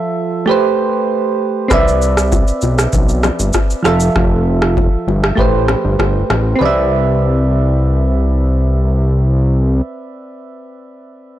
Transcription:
Already playing: F3 F4 A4 E5
0.46 A3 G4 B4
0.51 C5
1.68 C2 C4 B4 D5, kick, cross-stick, low conga, shaker
1.73 E5
1.88 shaker
2.02 shaker
2.17 cross-stick, shaker
2.32 kick, high bongo, shaker
2.48 shaker
2.62 B1, high bongo, shaker
2.79 cross-stick, shaker
2.93 B1, kick, low conga, shaker
3.09 shaker
3.23 cross-stick, low bongo, low conga, shaker
3.40 G1, shaker
3.53 kick, cross-stick, high bongo, shaker
3.70 shaker
3.83 F1 F3 F4 A4, cross-stick, low bongo, shaker
3.88 E5
4.00 shaker
4.16 F1, kick, cross-stick, low conga
4.62 cross-stick
4.77 kick, high bongo
5.08 G1, high bongo
5.24 cross-stick
5.35 A1 A3 G4 B4, kick, low conga
5.40 C5
5.68 cross-stick, low bongo, low conga
5.85 G1
5.99 G1, kick, cross-stick, high bongo
6.30 A1, cross-stick, low bongo
6.56 C4 B4
6.61 C2 D5, low conga
6.65 E5

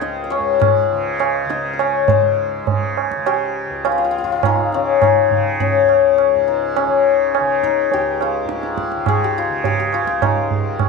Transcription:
Already playing: C#2 G#2 C#3 D#4 F4 A#4 C5 F5 G5
0.01 D#5, tabla te
0.24 D#5
0.30 C#5, tabla na
0.38 G#2
0.60 C5, tabla na, tabla ge
0.92 C#3
1.19 F5, tabla na
1.45 C#3
1.49 D#5, tabla te
1.73 D#5
1.79 C#5, tabla na
2.08 G#2 C5, tabla tin, tabla ge
2.64 C#3, tabla tin, tabla ge
2.97 tabla na
3.11 tabla ke
3.16 C#3
3.26 G4, tabla na
3.70 C#2
3.85 F4, tabla na
3.92 F4
3.98 F4
4.05 F4
4.11 F4
4.18 G#2 F4
4.24 F4
4.32 F4
4.43 D#4, tabla na, tabla ge
4.72 C#3 C#4, tabla te
5.02 D#4, tabla na, tabla ge
5.28 C#3, tabla ge
5.60 C#4, tabla tin, tabla ge
5.82 C#2
5.89 tabla na
6.18 tabla na
6.34 G#2
6.48 D#4
6.76 C#4, tabla na
6.87 C#3
7.35 tabla na
7.40 C#3
7.63 D#4, tabla ke
7.92 C#2 G4, tabla tin
8.21 F4, tabla na
8.44 G#2
8.49 tabla te
8.63 tabla te
8.78 tabla ke
8.92 tabla te
8.97 C#3
9.06 G#4, tabla na, tabla ge
9.24 G4
9.38 F4
9.49 C#3
9.64 G4, tabla tin, tabla ge
9.80 G4
9.93 F4, tabla na
10.02 C#2
10.07 tabla ke
10.22 D#4, tabla na, tabla ge
10.51 G#2, tabla ge
10.79 tabla na, tabla ge

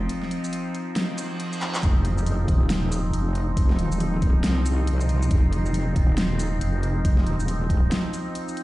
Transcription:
Already playing: F3 C4 D#4
0.09 closed hi-hat
0.23 snare
0.31 closed hi-hat
0.44 shaker
0.53 closed hi-hat
0.75 closed hi-hat
0.96 snare, closed hi-hat, reverse cymbal
1.18 closed hi-hat, shaker
1.40 closed hi-hat
1.53 shaker
1.61 clap, closed hi-hat
1.75 clap, shaker
1.83 F1 D#4, kick, closed hi-hat
2.05 closed hi-hat
2.18 shaker
2.26 closed hi-hat
2.48 D#1, kick, closed hi-hat
2.70 snare, closed hi-hat
2.92 closed hi-hat, shaker
3.13 F1, closed hi-hat
3.35 closed hi-hat
3.57 kick, closed hi-hat
3.70 snare
3.79 D#1, closed hi-hat
3.92 shaker
4.00 closed hi-hat
4.22 kick, closed hi-hat
4.44 C2, snare, closed hi-hat
4.66 closed hi-hat, shaker
4.87 closed hi-hat
5.01 shaker
5.09 closed hi-hat
5.22 shaker
5.31 F1, kick, closed hi-hat
5.53 closed hi-hat
5.66 shaker
5.74 closed hi-hat
5.96 D#1, kick, closed hi-hat
6.18 snare, closed hi-hat
6.39 closed hi-hat, shaker
6.61 F1, closed hi-hat
6.83 closed hi-hat
7.05 kick, closed hi-hat
7.18 snare
7.27 D#1, closed hi-hat
7.40 shaker
7.48 closed hi-hat
7.70 kick, closed hi-hat
7.92 snare, closed hi-hat
8.14 closed hi-hat, shaker
8.35 closed hi-hat
8.48 shaker
8.57 closed hi-hat

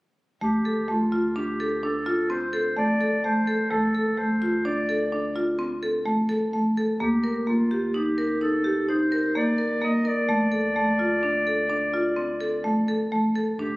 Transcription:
0.41 D2 A3 G4
0.65 A4
0.88 A3 F4
1.12 F4
1.36 D4 G4
1.60 A4
1.83 D4 A4
2.06 F4
2.30 C4 C5
2.53 A4
2.77 A3 D5
3.01 A4
3.24 A3 C5
3.47 A4
3.70 D2 A3 A4
3.95 A4
4.18 A3 C5
4.42 F4
4.65 D4 D5
4.89 A4
5.12 D4
5.36 F4
5.59 C4
5.83 A4
6.06 A3
6.29 A4
6.53 A3
6.77 A4
7.00 D2 A#3 G4
7.24 A#4
7.47 A#3 F4
7.71 G4
7.94 D#4 G4
8.18 A#4
8.41 D#4 A4
8.64 G4
8.89 D#4 C5
9.12 A#4
9.35 A#3 D5
9.58 A#4
9.82 A#3 D#5
10.05 A#4 D5
10.29 D2 A3
10.52 A4
10.76 A3
10.99 F4
11.23 D4
11.47 A4
11.69 D4
11.94 F4
12.16 C4
12.41 A4
12.64 A3
12.88 A4
13.12 A3
13.35 A4
13.58 D2 D4 G4

